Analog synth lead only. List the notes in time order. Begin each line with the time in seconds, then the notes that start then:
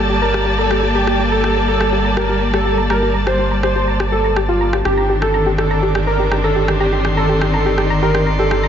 0.22 A#4
0.58 A4
0.95 G4
1.32 A4
1.68 A4
2.17 A#4
2.54 A4
2.90 A#4
3.27 C5
3.63 C5
4.12 A4
4.49 F4
4.85 G4
5.22 A4
5.58 A4
6.07 A#4
6.44 A4
6.80 G4
7.17 A4
7.54 A4
8.02 A#4
8.39 A4